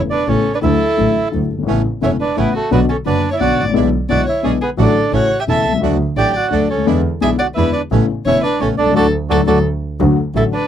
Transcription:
0.10 D4 B4 D5
0.27 A1 A2 C#3 A3 B3 C#4 E4 A4 C#5
0.54 D4 B4 D5
0.61 D2 D3 F#3 A3 E4 A4 E5
0.97 A1 A2 D3 F#3 A3 E4
1.31 D2 D3 F#3 A3 E4
1.51 F#1 G1
1.59 G1
1.63 G#1 A1 A2 C#3 A3 B3 E4
1.67 A1 A3 B3 C#4
2.01 E1 E2 C#3 A3 B3 C#4 E4 C#5 E5
2.20 D4 B4 D5
2.36 A1 A2 C#3 A3 B3 C#4 E4 B4
2.55 A3 F#4 A4
2.71 B1 B2 D3 F#3 B3 D4 F#4 B4
2.89 C#4 A4 C#5
3.05 F#1 F#2 D3 F#3 B3 D4 F#4 B4 D5
3.31 E4 C#5 E5
3.40 B1 B2 D3 F#3 B3 D4 F#4 D5 F#5
3.58 G#1 A1
3.65 A1
3.70 A#1 B1 B2 D3 G#3 B3
3.74 B1 G#3 D4 E4
4.08 B1 B2 D3 G#3 B3 D4 E4 F#4 D5 F#5
4.27 E4 C#5 E5
4.43 B1 B2 D3 G#3 B3 C#4 D4 E4 G#4 C#5
4.61 B3 G#4 B4
4.77 A1 A2 D3 F#3 A3 D4 F#4 A4
4.82 D5
5.12 A1 A2 C#3 E3 A3 C#4 E4 F#4 C#5
5.16 F#5
5.40 G4 E5 G5
5.47 E1 E2 C#3 E3 A3 C#4 E4 A4 E5 A5
5.65 B1 C2
5.72 C2 C#2
5.81 D2 D3 F#3 A3 D4 F#4
6.16 A1 A2 D3 F#3 A3 D4 F#4 G4 D5 G5
6.34 F#4 D5 F#5
6.50 D2 D3 F#3 A3 D4 F#4 A4 D5
6.69 D2 C#4 A4 C#5
6.73 C#2
6.78 D2
6.82 D#2
6.86 E2 D3 E3 G#3 B3 D4 E4
7.21 B1 B2 D3 G#3 B3 D4 E4 G#4 E5 G#5
7.38 F#4 D5 F#5
7.55 E2 D3 E3 G#3 B3 D4 E4 B4 E5
7.73 D4 B4 D5
7.91 A1 A2 C#3 A3 B3 C#4 E4
8.26 E1 E2 C#3 A3 B3 C#4 E4 C#5 E5
8.43 D4 B4 D5
8.60 A1 A2 C#3 A3 B3 C#4 E4 A4 C#5
8.78 B1 C2 D4 A4 D5
8.86 C2 C#2
8.93 D2 A2 D3 F#3 A3 D4 F#4 A4 D5
9.30 D2 A2 D3 F#3 A3 D4 F#4 A4 D5
9.47 D2 A2 D3 F#3 A3 D4 F#4 A4 D5
10.00 D2 D3 F#3 A3 F#4
10.34 A1 A2 D3 F#3 A3 E4 F#4 A4 E5
10.53 D4 B4 D5

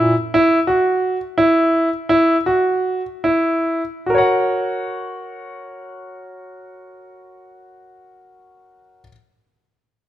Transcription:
Already playing: E4
0.00 A#2
0.34 E4
0.67 F#4
1.38 E4
2.09 E4
2.46 F#4
3.24 E4
4.06 F#4 A#4
4.14 C#5 F#5

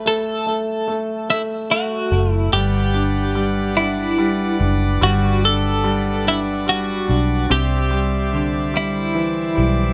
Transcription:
Already playing: A3
0.05 A1 A3 A4
0.47 A3
0.88 A3
1.30 A3 E4
1.70 A3 F#4
2.12 F#1 A3
2.32 E4
2.53 G1 G3 G4 B4 D5 F#5 D6
2.94 D4
3.35 G3
3.77 D4 E4
4.18 G3
4.60 F#1 D4
5.01 G1 G3 F#4
5.43 D4 A4
5.84 G3
6.25 D4 E4
6.67 G3 F#4
7.08 B1 D4
7.50 C2 C4 G4 C5 E5
7.91 G3
8.33 D3
8.74 G3 E4
9.15 E3
9.56 B1 G3

